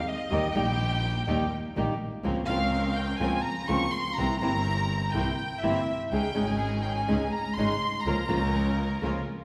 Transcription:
0.06 D#5
0.30 D#2 D#3 G3 A#3 D#4 G4
0.54 A#1 D#3 G3 A#3 D#4 G4 G5
1.27 D#2 D#3 G3 A#3 D#4 G4
1.75 A#1 D#3 G3 A#3 D#4 G4
2.23 C#2 C#3 F3 A#3 C4 C#4 F4 A#4
2.47 C#2 C#3 F3 A#3 C4 C#4 F4 A#4 F5
2.95 G5
3.18 C#2 C#3 F3 A#3 C4 C#4 F4 A#4 G#5
3.43 A#5
3.67 C#2 C#3 F3 A#3 C4 C#4 F4 A#4 C#6
3.90 C6
4.15 C2 C3 E3 A#3 C4 E4 A#4 A#5
4.39 G1 C3 E3 C4 A#5
4.43 A#3 E4 A#4
5.11 C2 C3 E3 A#3 C4 E4 G5
5.16 C4 E4 A#4
5.60 G1 C3 E3 A#3 C4 E4 E5
5.66 C4 E4 A#4
6.11 C#2 C#3 G#3 C#4 D#4 G#4 G5
6.34 G#1 C#3 G#3 C#4 D#4 G#4
6.46 G#5
6.82 G5
6.94 G#5
7.08 C#2 C#3 G#3 C#4 D#4 G#4
7.30 A#5
7.55 G#1 C#3 G#3 C#4 D#4 G#4 C6
7.59 G#4
8.03 C#2 C#3 F3 A#3 C#4 F4 A#4 A#5
8.07 F4 A#4
8.29 C#2 C#3 F3 A#3 C#4 F4 A#4
9.01 C#2 C#3 F3 A#3 C#4 F4 A#4

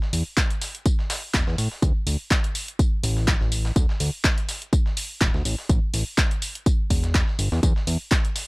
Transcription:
0.02 snare
0.13 E2, open hi-hat, tambourine
0.37 kick, snare, clap, closed hi-hat, tambourine
0.50 closed hi-hat
0.61 snare, open hi-hat, tambourine
0.75 closed hi-hat
0.86 kick, closed hi-hat, tambourine
0.99 snare
1.10 snare, open hi-hat, tambourine
1.34 E1, kick, snare, clap, closed hi-hat, tambourine
1.47 E2, snare
1.58 A2, open hi-hat, tambourine
1.72 snare
1.82 D2, kick, closed hi-hat, tambourine
2.07 D2, open hi-hat, tambourine
2.31 kick, snare, clap, closed hi-hat, tambourine
2.44 closed hi-hat
2.55 open hi-hat, tambourine
2.68 closed hi-hat
2.79 kick, closed hi-hat, tambourine
3.03 A1, open hi-hat, tambourine
3.17 snare
3.28 kick, snare, clap, closed hi-hat, tambourine
3.41 A1, snare
3.52 open hi-hat, tambourine
3.65 snare
3.76 D2, kick, closed hi-hat, tambourine
3.89 snare
4.00 D2, open hi-hat, tambourine
4.24 kick, snare, clap, closed hi-hat, tambourine
4.38 closed hi-hat
4.49 snare, open hi-hat, tambourine
4.62 closed hi-hat
4.73 kick, closed hi-hat, tambourine
4.86 snare
4.97 open hi-hat, tambourine
5.21 D1, kick, snare, clap, closed hi-hat, tambourine
5.34 D2, snare
5.45 A1, open hi-hat, tambourine
5.58 snare
5.69 A1, kick, closed hi-hat, tambourine
5.94 A1, open hi-hat, tambourine
6.18 kick, snare, clap, closed hi-hat, tambourine
6.31 closed hi-hat
6.42 open hi-hat, tambourine
6.55 closed hi-hat
6.66 kick, closed hi-hat, tambourine
6.90 E1, kick, open hi-hat, tambourine
7.04 snare, closed hi-hat
7.14 kick, snare, clap, closed hi-hat, tambourine
7.28 snare
7.39 G1, open hi-hat, tambourine
7.52 E2, snare
7.63 E2, kick, closed hi-hat, tambourine
7.76 snare
7.87 E2, open hi-hat, tambourine
8.11 kick, snare, clap, closed hi-hat, tambourine
8.25 closed hi-hat
8.36 snare, open hi-hat, tambourine

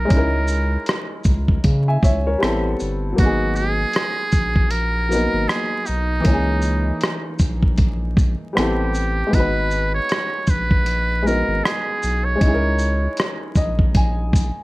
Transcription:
Already playing: A#4
0.05 G#3 C#4
0.10 C#2 D#4, kick, closed hi-hat
0.15 E4 A#4
0.48 shaker
0.86 cross-stick, closed hi-hat
1.24 C#2, kick, shaker
1.48 kick
1.64 C#3, kick, closed hi-hat
1.88 E5 G#5
2.03 C#2 C#5 E5, kick, closed hi-hat, shaker
2.27 A#4 C#5
2.38 G3 B3 C4
2.43 A1 E4 A4, cross-stick, closed hi-hat
2.80 G1, shaker
3.13 F#3 A#3
3.18 G#1 B3 D#4 F#4, kick, closed hi-hat
3.25 G#4
3.56 G#4, shaker
3.93 cross-stick, closed hi-hat
4.32 A#1, kick, closed hi-hat, shaker
4.56 kick
4.71 A#4, closed hi-hat
5.09 F#3 A#3 B3, shaker
5.13 D#4 A#4
5.33 G#1
5.48 G#4, cross-stick, closed hi-hat
5.86 B1 D#4, shaker
6.20 E3 A#3
6.25 C#2 C#4, kick, closed hi-hat
6.30 D#4 G#4
6.62 shaker
7.01 cross-stick, closed hi-hat
7.39 A#1, kick, closed hi-hat, shaker
7.63 kick
7.78 kick, closed hi-hat
8.17 kick, shaker
8.53 G3 B3 C4, cross-stick
8.58 A1 E4 G4 A4, closed hi-hat
8.95 shaker
9.27 G#3 B3
9.33 G#1 D#4 F#4 B4, kick, closed hi-hat
9.40 B4
9.71 shaker
9.94 C#5
10.09 cross-stick, closed hi-hat
10.47 A#1 B4, kick, closed hi-hat, shaker
10.71 kick
10.86 closed hi-hat
11.22 G#3 B3 D#4
11.27 F#4 A#4, shaker
11.48 G#1
11.64 G#4, cross-stick, closed hi-hat
12.03 B1, shaker
12.25 C#5
12.35 G#3 C#4
12.41 C#2 D#4 E4, kick, closed hi-hat
12.48 G#4
12.54 A#4
12.79 shaker
13.17 cross-stick, closed hi-hat
13.55 A#1 D#5, kick, shaker
13.79 kick
13.95 G#5, kick, closed hi-hat
14.33 kick, closed hi-hat, shaker

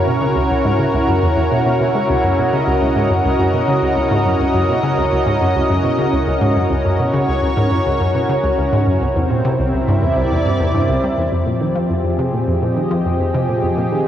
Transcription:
Already playing: C#3 C#4 E4 F#4 A#4 C#5
0.07 B2
0.21 C#3
0.36 C#2
0.51 C#2
0.65 G#2
0.79 C#3
0.94 C#2
1.08 F#2
1.23 E2
1.37 E2
1.52 B2
1.66 B2
1.80 B2
1.95 G#3
2.09 C#2
2.24 F#2
2.36 B2 D#5
2.53 C#3
2.67 C#2
2.82 C#2
2.96 G#2
3.10 F#2
3.25 C#2
3.39 F#2
3.54 B2
3.68 C#3
3.82 C#2
3.97 C#2
4.11 G#2
4.26 F#2
4.40 C#2
4.54 F#2
4.69 B2
4.83 C#3
4.98 C#2
5.12 C#2
5.26 G#2
5.41 F#2
5.56 C#2
5.70 F#2
5.84 B2
5.99 C#3
6.13 C#2
6.27 C#2
6.42 G#2
6.56 F#2
6.70 C#2
6.85 F#2
6.97 B2 C#5
7.14 C#3
7.28 C#2
7.43 C#2
7.57 G#2
7.72 F#2
7.86 C#2
8.00 F#2
8.15 B2
8.29 C#3
8.44 C#2
8.58 C#2
8.73 G#2
8.87 F#2
9.01 C2 C3
9.12 E2 C4
9.30 A#2
9.45 C3
9.59 C2 E4
9.73 C2
9.88 G2
10.02 E2 D5
10.17 C2
10.31 E2
10.45 G2
10.60 E2
10.74 G2
10.89 C2
11.03 G3
11.18 E2
11.32 F2 F3
11.46 A#2
11.58 D#3 G4
11.75 F3
11.90 F2 G#4
12.04 F2
12.19 C3
12.33 A#2
12.48 F2
12.55 D#5
12.62 A#2
12.76 D#3
12.91 F3
13.05 F2
13.20 F2
13.34 C3
13.48 A#2
13.63 F2
13.77 A#2
13.92 D#3

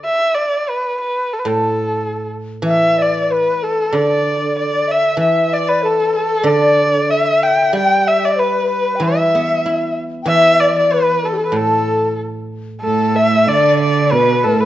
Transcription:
0.05 E5
0.35 D5
0.69 B4
1.01 B4
1.33 A4
1.40 B4
1.45 A2 A4
2.62 E3 E5
2.70 E5
2.98 D5
3.02 D5
3.22 D5
3.31 B4
3.63 A4
3.92 D3 D5
4.56 D5
4.88 E5
5.17 E3 E5
5.21 E5
5.53 D5
5.69 B4
5.83 A4
6.16 A4
6.44 D3 D5
7.09 E5
7.43 G5
7.72 G3 G5
8.00 G5
8.07 E5
8.25 D5
8.38 B4
8.70 B4
8.95 G5
9.00 E3 E5
9.35 B3
9.65 E4
10.23 E3 G5
10.28 E5
10.61 D5
10.69 E5
10.75 D5
10.93 B4
11.24 A4
11.33 G4
11.38 A4
11.46 B4
11.52 A2
11.56 A4
12.82 A2 A4
13.16 E5
13.47 D3 D5
13.80 D5
14.05 D5
14.12 B2 B4
14.44 A2 A4
14.61 B4

